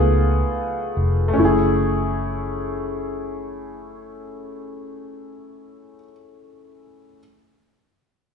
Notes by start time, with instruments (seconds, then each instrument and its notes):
Already playing: fingered electric bass C#2, upright piano A3 B3 F4 G#4
0.97 fingered electric bass F1
1.28 upright piano A3
1.33 upright piano C#4
1.38 fingered electric bass F#1, upright piano E4
1.45 upright piano G#4